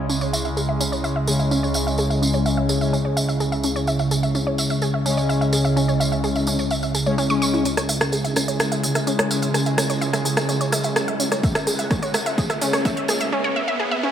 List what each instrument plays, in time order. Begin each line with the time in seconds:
Already playing: analog synth pad C#2 C#3 G#3 E4, synth drone C#3 G#3
0.10 synth arpeggio sound C#4, analog synth pad C#5, tambourine
0.21 synth arpeggio sound C#5, tambourine
0.33 synth arpeggio sound E5, tambourine
0.45 synth arpeggio sound E5, tambourine
0.57 synth arpeggio sound G#4, tambourine
0.69 synth arpeggio sound E5
0.80 synth arpeggio sound C#4, tambourine
0.92 synth arpeggio sound C#5, tambourine
1.04 synth arpeggio sound E5, tambourine
1.16 synth arpeggio sound E5
1.27 analog polysynth C#3 G#3 C#4, synth arpeggio sound G#4, tambourine
1.39 synth arpeggio sound E5, tambourine
1.51 synth arpeggio sound C#4, tambourine
1.63 synth arpeggio sound C#5, tambourine
1.74 synth arpeggio sound E5, tambourine
1.87 synth arpeggio sound E5, tambourine
1.98 synth arpeggio sound G#4, tambourine
2.10 synth arpeggio sound E5, tambourine
2.22 synth arpeggio sound C#4, tambourine
2.33 synth arpeggio sound C#5, tambourine
2.46 synth arpeggio sound E5, tambourine
2.57 synth arpeggio sound E5
2.69 synth arpeggio sound G#4, tambourine
2.81 analog polysynth C#3 G#3 C#4, synth arpeggio sound E5, tambourine
2.93 synth arpeggio sound C#4, tambourine
3.05 synth arpeggio sound C#5
3.17 synth arpeggio sound E5, tambourine
3.29 synth arpeggio sound E5, tambourine
3.40 synth arpeggio sound G#4, tambourine
3.52 synth arpeggio sound E5, tambourine
3.63 synth arpeggio sound C#4, tambourine
3.76 synth arpeggio sound C#5, tambourine
3.87 synth arpeggio sound E5, tambourine
3.99 synth arpeggio sound E5, tambourine
4.11 synth arpeggio sound G#4, tambourine
4.23 synth arpeggio sound E5, tambourine
4.35 synth arpeggio sound C#4, tambourine
4.47 synth arpeggio sound C#5
4.58 synth arpeggio sound E5, tambourine
4.70 synth arpeggio sound E5, tambourine
4.82 synth arpeggio sound G#4, tambourine
4.94 synth arpeggio sound E5
5.06 analog polysynth C#3 G#3 C#4, synth arpeggio sound C#4, tambourine
5.17 synth arpeggio sound C#5, tambourine
5.29 synth arpeggio sound E5, tambourine
5.41 synth arpeggio sound E5, tambourine
5.53 synth arpeggio sound G#4, tambourine
5.65 synth arpeggio sound E5, tambourine
5.76 synth arpeggio sound C#4, tambourine
5.88 synth arpeggio sound C#5, tambourine
6.00 synth arpeggio sound E5, tambourine
6.12 synth arpeggio sound E5, tambourine
6.24 synth arpeggio sound G#4, tambourine
6.35 synth arpeggio sound E5, tambourine
6.47 synth arpeggio sound C#4, tambourine
6.59 synth arpeggio sound C#5, tambourine
6.71 synth arpeggio sound E5, tambourine
6.83 synth arpeggio sound E5, tambourine
6.95 synth arpeggio sound G#4, tambourine
7.06 analog polysynth C#3 G#3 C#4, synth arpeggio sound C#5, tambourine
7.18 synth arpeggio sound C#4, tambourine
7.30 analog polysynth C#3 G#3 C#4, synth arpeggio sound C#6, tambourine
7.42 synth arpeggio sound C#6, tambourine
7.54 synth arpeggio sound E4, tambourine
7.65 detuned saw bass C#2, analog synth pad C#3 G#3 E4 C#5 G#5, synth drone C#3 G#3, synth arpeggio sound C#4, closed hi-hat, tambourine, riser
7.77 detuned saw bass C#2, synth arpeggio sound C#5, cross-stick, closed hi-hat, tambourine
7.89 detuned saw bass C#2, synth arpeggio sound E5, open hi-hat, tambourine
8.01 detuned saw bass C#2, synth arpeggio sound E5, cross-stick, closed hi-hat, tambourine
8.12 detuned saw bass C#2, synth arpeggio sound G#4, closed hi-hat, tambourine
8.24 detuned saw bass G#1, synth arpeggio sound E5, closed hi-hat, tambourine
8.36 detuned saw bass C#2, synth arpeggio sound C#4, cross-stick, open hi-hat, tambourine
8.48 detuned saw bass C#2, synth arpeggio sound C#5, closed hi-hat, tambourine
8.60 detuned saw bass C#2, synth arpeggio sound E5, cross-stick, closed hi-hat, tambourine
8.72 detuned saw bass C#2, synth arpeggio sound E5, closed hi-hat, tambourine
8.83 detuned saw bass C#2, analog polysynth C#3 G#3 C#4, synth arpeggio sound G#4, open hi-hat, tambourine
8.95 detuned saw bass C#2, synth arpeggio sound E5, cross-stick, closed hi-hat, tambourine
9.07 detuned saw bass C#2, synth arpeggio sound C#4, closed hi-hat, tambourine
9.19 detuned saw bass C#2, synth arpeggio sound C#5, cross-stick, closed hi-hat
9.31 detuned saw bass C#2, synth arpeggio sound E5, open hi-hat, tambourine
9.42 detuned saw bass G#1, synth arpeggio sound E5, closed hi-hat, tambourine
9.54 detuned saw bass C#2, synth arpeggio sound G#4, cross-stick, closed hi-hat, tambourine
9.66 detuned saw bass C#2, synth arpeggio sound E5, closed hi-hat, tambourine
9.78 detuned saw bass C#2, synth arpeggio sound C#4, cross-stick, open hi-hat, tambourine
9.90 detuned saw bass C#2, synth arpeggio sound C#5, closed hi-hat, tambourine
10.01 detuned saw bass C#2, synth arpeggio sound E5, closed hi-hat, tambourine
10.13 detuned saw bass G#1, synth arpeggio sound E5, cross-stick, closed hi-hat, tambourine
10.25 detuned saw bass C#2, synth arpeggio sound G#4, open hi-hat, tambourine
10.37 detuned saw bass C#2, analog polysynth C#3 G#3 C#4, synth arpeggio sound E5, cross-stick, closed hi-hat, tambourine
10.49 detuned saw bass C#2, synth arpeggio sound C#4, closed hi-hat, tambourine
10.61 detuned saw bass C#2, synth arpeggio sound C#5, closed hi-hat, tambourine
10.72 detuned saw bass C#2, synth arpeggio sound E5, cross-stick, open hi-hat, tambourine
10.83 detuned saw bass C#2, synth arpeggio sound E5, closed hi-hat, tambourine
10.96 detuned saw bass C#2, synth arpeggio sound G#4, cross-stick, closed hi-hat, tambourine
11.08 detuned saw bass C#2, synth arpeggio sound E5, closed hi-hat
11.20 detuned saw bass C#2, synth arpeggio sound C#4, open hi-hat, tambourine
11.32 detuned saw bass G#1, synth arpeggio sound C#5, cross-stick, closed hi-hat, tambourine
11.43 detuned saw bass C#2, synth arpeggio sound E5, analog synth pad F#5, kick, closed hi-hat, tambourine
11.55 detuned saw bass C#2, synth arpeggio sound E5, cross-stick, closed hi-hat, tambourine
11.67 detuned saw bass C#2, synth arpeggio sound G#4, open hi-hat, tambourine
11.79 detuned saw bass C#2, synth arpeggio sound E5, closed hi-hat, tambourine
11.91 detuned saw bass C#2, synth arpeggio sound C#4, kick, cross-stick, closed hi-hat, tambourine
12.02 detuned saw bass G#1, synth arpeggio sound C#5, closed hi-hat, tambourine
12.14 detuned saw bass C#2, synth arpeggio sound E5, cross-stick, open hi-hat, tambourine
12.26 detuned saw bass C#2, synth arpeggio sound E5, closed hi-hat, tambourine
12.38 detuned saw bass C#2, synth arpeggio sound G#4, kick, closed hi-hat, tambourine
12.50 detuned saw bass C#2, synth arpeggio sound E5, cross-stick, closed hi-hat, tambourine
12.61 detuned saw bass C#2, analog polysynth C#3 G#3 C#4, synth arpeggio sound C#4, open hi-hat, tambourine
12.73 detuned saw bass C#2, synth arpeggio sound C#5, cross-stick, closed hi-hat, tambourine
12.85 detuned saw bass C#2, synth arpeggio sound E5, kick, closed hi-hat, tambourine
12.97 detuned saw bass C#2, synth arpeggio sound E5, closed hi-hat
13.08 detuned saw bass C#2, synth arpeggio sound G#4, cross-stick, open hi-hat, tambourine
13.21 detuned saw bass G#1, synth arpeggio sound E5, closed hi-hat, tambourine
13.32 synth arpeggio sound C#4
13.44 synth arpeggio sound C#5
13.56 synth arpeggio sound E5
13.68 synth arpeggio sound E5
13.80 synth arpeggio sound G#4
13.91 synth arpeggio sound E5
14.03 synth arpeggio sound C#4